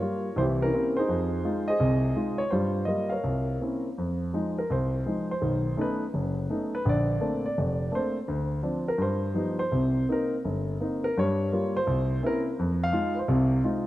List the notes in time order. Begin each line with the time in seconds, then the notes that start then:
Already playing: A#4 C#5
0.01 G3 A#3 F4
0.36 C2 E3 E4 G4 C5
0.62 C#4 E4 A#4
0.73 A#3 C4 C#4 E4
0.97 D#4 G#4 C5
1.09 F2 F3
1.45 G#3 D#4 F4
1.68 G#4 C5 D#5
1.80 C2 C3
2.16 G#3 D#4 F4
2.38 C#5
2.51 G2 G3 F4 C5
2.85 G3 A#3 F4 D#5
3.09 A#4 C#5 F5
3.24 C2
3.61 A#3 C4 C#4 E4
3.98 F2
4.33 F3 G#3 D#4
4.58 A#4
4.70 C2 C5
5.06 F3 G#3 D#4
5.31 C5
5.42 B1 D#3
5.77 A3 B3 C#4 D#4
5.81 B4
6.14 F#1
6.50 A3 B3 C#4 D#4
6.75 B4
6.85 A#1 D3 D5
7.21 A3 A#3 C4 D4
7.46 D5
7.58 F1
7.92 A3 A#3 C4 D4 C5
8.28 D2
8.63 F3 C4 D4
8.88 A#4
8.98 G2 C5
9.34 F3 G3 B3 D#4
9.59 C5
9.72 C2 C3
10.09 A#3 C4 D#4 A#4
10.45 G1
10.81 A#3 C4 D#4
11.04 A#4
11.17 G2 G3 C#5
11.52 G3 A#3 F4
11.77 C5
11.87 C2
12.23 A#3 C4 C#4 E4 A#4
12.59 F2
12.84 F5
12.92 G#3 D#4 F4
13.15 B4
13.19 C5
13.28 C2 C3
13.64 G#3 D#4 F4